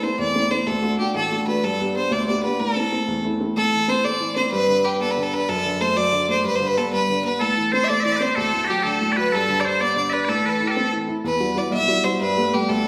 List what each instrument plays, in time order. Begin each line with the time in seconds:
0.03 upright piano A3 C4 E4, fiddle C5
0.19 upright piano E2, fiddle D5
0.35 upright piano A3 C4 E4
0.51 upright piano A3 C4 E4, fiddle C5
0.67 upright piano D2, fiddle A4
0.82 upright piano A3 D4 F#4
0.98 upright piano A3 D4 F#4, fiddle G4
1.15 upright piano A1, fiddle A4
1.31 upright piano A3 D4 F#4
1.46 upright piano A3 D4 F#4, fiddle B4
1.63 upright piano G2, fiddle A4
1.79 upright piano B3 D4 G4
1.94 upright piano B3 D4 G4, fiddle C5
2.11 upright piano D2, fiddle D5
2.27 upright piano B3 D4 G4, fiddle D5
2.43 upright piano B3 D4 G4, fiddle B4
2.60 upright piano A2, fiddle A4
2.76 upright piano A3 C4 E4
2.92 upright piano A3 C4 E4
3.08 upright piano E2
3.24 upright piano A3 C4 E4
3.40 upright piano A3 C4 E4
3.56 upright piano A2, fiddle A4
3.73 upright piano E3
3.88 upright piano C4, fiddle C5
4.04 upright piano A3, fiddle D5
4.20 upright piano E3
4.36 upright piano C4, fiddle C5
4.52 upright piano G2, fiddle B4
4.69 upright piano D3
4.85 upright piano D4, fiddle G4
5.00 upright piano B3, fiddle A4
5.11 fiddle B4
5.17 upright piano D3
5.23 fiddle A4
5.33 upright piano D4, fiddle B4
5.49 upright piano F#2, fiddle A4
5.65 upright piano D3
5.81 upright piano A3, fiddle C5
5.96 upright piano F#3, fiddle D5
6.12 upright piano D3
6.28 upright piano A3, fiddle C5
6.44 upright piano G2, fiddle B4
6.55 fiddle C5
6.60 upright piano D3
6.67 fiddle B4
6.77 upright piano B3, fiddle A4
6.93 upright piano G3, fiddle B4
7.09 upright piano D3
7.24 upright piano B3, fiddle B4
7.40 upright piano A2, bagpipes A4, fiddle A4
7.57 upright piano E3
7.72 upright piano C4, bagpipes C5, fiddle C5
7.84 bagpipes D5, fiddle E5
7.89 upright piano A3, fiddle D5
8.00 bagpipes D5 E5
8.05 upright piano E3, fiddle D5
8.12 bagpipes E5
8.16 bagpipes B4 C5
8.20 upright piano C4, fiddle C5
8.36 upright piano D2, bagpipes A4, fiddle A4
8.53 upright piano A2
8.65 bagpipes F#4 G4
8.69 upright piano F#3, fiddle G4
8.83 upright piano D3, bagpipes A4, fiddle A4
9.01 upright piano A2
9.12 bagpipes D5
9.17 upright piano F#3, bagpipes B4, fiddle B4
9.32 upright piano G2, bagpipes A4, fiddle A4
9.48 upright piano D3
9.60 fiddle D5, bagpipes D5
9.64 upright piano D4, bagpipes C5, fiddle C5
9.80 upright piano B3, bagpipes D5, fiddle D5
9.96 upright piano D3, fiddle D5
10.10 upright piano D4, bagpipes B4 E5, fiddle B4
10.25 upright piano A2, fiddle A4, bagpipes D5
10.29 bagpipes A4
10.44 upright piano E3, bagpipes B4, fiddle B4
10.49 bagpipes A4, fiddle A4
10.60 upright piano E4
10.67 fiddle G4 A4, bagpipes A4 B4
10.77 upright piano C4
10.93 upright piano E3
11.08 upright piano E4
11.24 upright piano E2, fiddle B4
11.40 upright piano G3 E4 F#4
11.55 upright piano G3 E4 F#4, fiddle D5
11.71 upright piano B1, fiddle E5
11.88 upright piano G3 E4 F#4
12.04 upright piano G3 E4 F#4, fiddle C5
12.21 upright piano G2, fiddle B4
12.36 upright piano G3 A3 B3
12.53 upright piano G3 A3 B3, fiddle G4
12.69 upright piano D2, fiddle A4